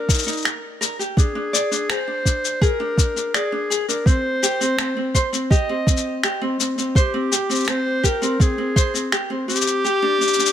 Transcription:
Already playing: A#4
0.09 D#4, kick, shaker
0.14 shaker
0.18 shaker
0.23 D#4, shaker
0.28 shaker
0.32 shaker
0.37 shaker
0.42 A#4, finger snap, shaker
0.46 shaker
0.81 A#4, shaker
0.99 G4, shaker
1.17 D4 G#4, kick, shaker
1.35 D4
1.53 D5, shaker
1.71 D4, shaker
1.89 G#4 C5, finger snap, shaker
2.07 D4
2.25 D4, kick, shaker
2.45 shaker
2.61 G#4 A#4, kick, shaker
2.80 D4
2.97 D4, kick, shaker
3.16 D4, shaker
3.34 G#4 D5, finger snap, shaker
3.52 D4
3.70 G#4, shaker
3.88 D4 A#4, shaker
4.06 C4 C5, kick, shaker
4.43 G4, shaker
4.61 C4, shaker
4.78 C4, finger snap, shaker
4.97 C4
5.14 C5, kick, shaker
5.33 C4, shaker
5.51 G4 D#5, kick, shaker
5.69 C4
5.87 C4, kick, shaker
5.97 shaker
6.23 G4, finger snap, shaker
6.42 C4
6.60 C4, shaker
6.78 C4, shaker
6.95 G4 C5, kick, shaker
7.14 C4
7.32 G4, shaker
7.49 C4, shaker
7.55 shaker
7.60 shaker
7.64 C4, finger snap, shaker
7.68 C5, shaker
8.03 G4 A#4, kick, shaker
8.22 C4, shaker
8.40 C4 G#4, kick, shaker
8.58 C4
8.76 C5, kick, shaker
8.94 C4, shaker
9.12 G4, finger snap, shaker
9.30 C4
9.48 C4 G4, shaker
9.55 shaker
9.61 shaker
9.67 shaker
9.84 G4, shaker
10.02 D4
10.21 D4, shaker
10.27 shaker
10.33 shaker
10.39 D4, shaker
10.46 shaker

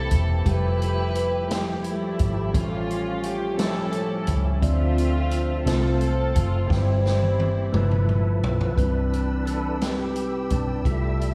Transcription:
Already playing: C3 E3 A#3 C4 E4 G4 A4 C5
0.11 E1, kick, closed hi-hat
0.45 F1 F3 G3 A3 E4 F4 G4 B4, kick, closed hi-hat
0.53 G4 A4
0.82 closed hi-hat
1.15 closed hi-hat
1.49 F3 G3 E4 G4, snare, closed hi-hat
1.84 G3 A3 E4, closed hi-hat
2.19 G#1, kick, closed hi-hat
2.53 A1 A2 F3 G3 A3 C#4 F4 G4 A4, kick, closed hi-hat
2.91 closed hi-hat
3.23 G4, closed hi-hat
3.57 F3 G3 C#4 E4 A4, snare, closed hi-hat
3.92 closed hi-hat
4.27 C#2, kick, closed hi-hat
4.62 D2 D3 F3 A3 C4 D#4 F4 D5 E5, kick, closed hi-hat
4.69 E5
4.98 closed hi-hat
5.31 closed hi-hat
5.65 C2 C3 F3 G#3 A3 C4 F4 A4 C5, snare, closed hi-hat
5.73 A3
6.01 A4, closed hi-hat
6.36 F#1 F4, kick, closed hi-hat
6.67 G1 G2 E3 G3 C4 E4 G4 B4, kick
6.71 G3 C4 E4, snare
6.77 C5
7.06 snare
7.22 high tom
7.40 high tom
7.71 G1 G2 F3 A3 E4 A4 B4, mid tom
7.91 mid tom
8.09 mid tom
8.43 B1, floor tom
8.61 floor tom
8.76 C2 C3 E3 G3 C4 D4 B4 G5 B5 E6, kick, closed hi-hat
8.83 E4
9.13 closed hi-hat
9.46 A4, closed hi-hat
9.80 G3 C4 D#4 G4 B4, snare, closed hi-hat
9.87 E4
10.16 closed hi-hat
10.50 B1 D4, kick, closed hi-hat
10.83 C2 C3 G3 A3 E4 F4 G#4 E5 A5, kick, closed hi-hat
10.92 A4
11.21 closed hi-hat

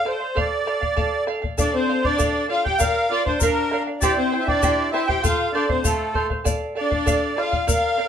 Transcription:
0.05 A4 C5 D5 F5, bombo rim
0.21 D5 F5
0.35 A4 D5 F5, bombo low
0.66 A4 D5 F5, bombo rim
0.81 D5 F5, bombo low
0.96 A4 D5 F5, bombo low
1.27 A4 D5 F5, bombo rim
1.42 D5 F5, bombo low
1.58 D4 A4 D5 F5, bombo low, shaker
1.73 C4 C5
1.88 A4 D5 F5
2.03 D4 D5 F5, bombo low
2.18 A4 D5 F5, bombo low, shaker
2.49 F4 A4 D5 F5
2.64 G4 D5 F5 G5, bombo low
2.79 A#4 D5 F5, bombo low, shaker
3.10 F4 A#4 D5 F5
3.24 D4 C5 D5 F5, bombo low
3.39 D4 A#4 D5 F5, bombo low, shaker
3.71 A#4 D5 F5, bombo rim
3.87 D5 F5
4.00 E4 G4 C5 D5 E5 G5, bombo low, shaker
4.17 C4 C5
4.32 E4 C5 E5 G5
4.40 F4 E5
4.47 D4 E4 C5 D5 G5, bombo low
4.62 E4 G4 C5 E5 G5, bombo low, shaker
4.91 E4 C5 E5 G5, bombo rim
5.06 E4 G4 C5 G5, bombo low
5.23 F4 A4 C5 F5, bombo low, shaker
5.52 D4 A4 C5 D5 F5
5.68 C4 C5 F5, bombo low
5.84 A3 A4 C5 F5, bombo low, shaker
6.14 A4 C5 F5, bombo low
6.30 C5 F5, bombo low
6.44 A4 D5 F5, bombo low, shaker
6.75 D4 A4 D5 F5
6.91 D5 F5, bombo low
7.06 A4 D5 F5, bombo low, shaker
7.37 F4 A4 D5 F5, bombo rim
7.52 D5 F5, bombo low
7.67 A#4 D5 F5, bombo low, shaker
7.98 A#4 D5 F5

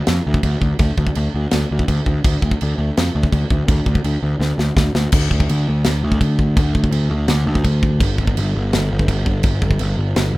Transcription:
0.07 F2, snare, china
0.27 D2
0.34 kick
0.43 D2, kick, china
0.61 D2, kick
0.79 D2, kick, china
0.97 D2, kick
1.07 kick
1.15 D2, china
1.34 D2
1.51 D2, snare, china
1.71 D2
1.79 kick
1.88 D2, kick, china
2.06 D2, kick
2.24 D2, kick, china
2.42 D2, kick
2.51 kick
2.61 D2, china
2.78 D2
2.97 F2, snare, china
3.15 D2
3.23 kick
3.32 D2, kick, china
3.50 D2, kick
3.68 D2, kick, china
3.86 D2, kick
3.95 kick
4.04 D2, china
4.23 D2
4.39 D2, snare
4.58 D2, snare
4.76 D2, kick, snare
4.95 D2, snare
5.12 D2, kick, crash, china
5.30 D2, kick
5.40 kick
5.49 D2, china
5.69 D2
5.84 D2, snare, china
6.04 D2
6.12 kick
6.21 D2, kick, china
6.39 kick
6.57 D2, kick, china
6.75 D2, kick
6.84 kick
6.91 D2, china
7.10 D2
7.28 D2, snare, china
7.47 D2
7.55 kick
7.64 D2, kick, china
7.83 kick
8.00 G1, kick, china
8.18 G1, kick
8.27 kick
8.37 G1, china
8.56 G1
8.73 G1, snare, china
8.92 G1
8.99 kick
9.08 G1, kick, china
9.26 kick
9.43 G1, kick, china
9.62 G1, kick
9.71 kick
9.79 G1, china
9.98 G1
10.16 G1, snare, china
10.34 G1

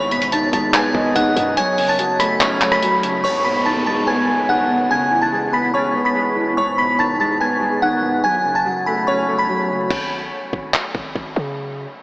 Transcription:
Already playing: G#1 G#2
0.11 B2 B5 B6, closed hi-hat
0.22 closed hi-hat
0.32 D#3 A5 A6, closed hi-hat
0.53 G#1 G#3 A5 A6, kick, closed hi-hat
0.74 B3 G#5 G#6, clap, closed hi-hat
0.94 G#1 G#3 D#5, kick
1.16 G#1 D#3 F#5 F#6, kick, closed hi-hat
1.36 F#2 B2, closed hi-hat
1.57 F#2 C#5 G#5 G#6, closed hi-hat
1.78 C#3, open hi-hat
1.89 A5 A6
1.99 F#3, closed hi-hat
2.20 A3 B5 B6, cross-stick, closed hi-hat
2.40 C#4 C#5 C#6, clap, closed hi-hat
2.61 A3, clap, closed hi-hat
2.72 B5 B6, cross-stick
2.82 F#3, closed hi-hat
3.03 C#3, closed hi-hat
3.24 G#2 C#5 C#6, downlifter
3.45 B2 B5 B6
3.66 D#3 A5 A6
3.86 G#3 A5 A6
4.07 B3 G#5 G#6
4.28 G#3
4.48 D#3 F#5 F#6
4.70 B2
4.90 C#3 G#5 G#6
5.11 E3
5.22 A5 A6
5.32 G#3
5.53 B3 B5 B6
5.74 C#4 C#5 C#6
5.95 B3
6.05 B5 B6
6.15 G#3
6.36 E3
6.57 G#2 C#5 C#6
6.78 B2 B5 B6
6.99 D#3 A5 A6
7.20 G#3 A5 A6
7.40 B3 G#5 G#6
7.61 G#3
7.82 D#3 F#5 F#6
8.02 B2
8.24 F#2 G#5 G#6
8.45 C#3
8.55 A5 A6
8.65 F#3
8.86 A3 B5 B6
9.07 C#4 C#5 C#6
9.28 A3
9.38 B5 B6
9.49 F#3
9.70 C#3
9.91 G#1, kick, crash
10.53 G#1, kick
10.74 clap
10.95 G#1, kick
11.15 G#1, kick
11.36 C#3

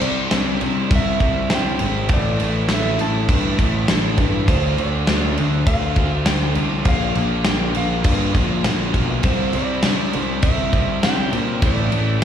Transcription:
Already playing: C3 G3 C4
0.01 C2 C3 E3 G3 C4 E4 D5, crash
0.30 C2 C3 E3 G3 C4 E4, snare, crash
0.60 C2 C3 E3 G3 C4 E4, crash
0.89 C2 C3 E3 G3 C4 E4, kick, crash
0.95 E5
1.19 C2 C3 E3 G3 C4 E4, kick, crash
1.50 C2 C3 E3 G3 C4 E4, snare, crash
1.55 G5
1.79 G#1 C3 E3 G3 C4 E4, crash
2.08 A1 A2 E3 A3 D4 E4, kick, crash
2.14 D5
2.39 A1 A2 E3 A3 D4 E4, crash
2.68 A1 A2 E3 A3 D4 E4, snare, crash
2.73 E5
2.97 A1 A2 E3 A3 D4 E4 A5, crash
3.27 G2 A2 E3 A3 D4 E4, kick, crash
3.57 A1 A2 E3 A3 D4 E4, kick, crash
3.87 A1 A2 E3 A3 D4 E4, snare, crash
4.16 G2 A2 E3 A3 D4 E4, kick, crash
4.46 D2 D3 A3 D4 F4 C5, kick, crash
4.76 D2 D3 A3 D4 F4 D5, crash
5.05 D2 D3 A3 D4 F4, snare, crash
5.35 D3 A3 D4 F4, crash
5.40 D2
5.65 D2 D3 A3 D4 F4 F5, kick, crash
5.96 D2 D3 A3 D4 F4, kick, crash
6.26 D2 D3 A3 D4 F4 G5, snare, crash
6.55 C2 D3 A3 D4 F4, crash
6.85 A#1 A#2 D3 F3 A#3 D4 F4 F5, kick, crash
7.15 A#1 A#2 D3 F3 A#3 D4 F4, crash
7.44 A#1 A#2 D3 F3 A#3 D4 F4, snare, crash
7.49 G5
7.74 A#1 A#2 D3 F3 A#3 D4 F4 F5, crash
8.04 G2 A#2 D3 F3 A#3 D4 F4, kick, crash
8.34 A#1 A#2 D3 F3 A#3 D4 F4, kick, crash
8.63 A#1 A#2 D3 F3 A#3 D4 F4, snare, crash
8.93 B1 A#2 D3 F3 A#3 D4 F4, kick, crash
9.22 C2 C3 E3 G3 C4 E4 C5, kick, crash
9.51 C2 C3 E3 G3 C4 E4 D5, crash
9.82 C2 C3 E3 G3 C4 E4, snare, crash
10.13 C2 C3 E3 G3 C4 E4, crash
10.41 C2 C3 E3 G3 C4 E4 E5, kick, crash
10.71 C2 C3 E3 G3 C4 E4, kick, crash
11.03 C2 C3 E3 G3 C4 E4 G5, snare, crash
11.32 A#2 C3 E3 G3 C4 E4, crash
11.61 A1 A2 E3 A3 D4 E4, kick, crash
11.66 D5
11.92 A1 A2 E3 A3 D4 E4, crash
12.20 A2

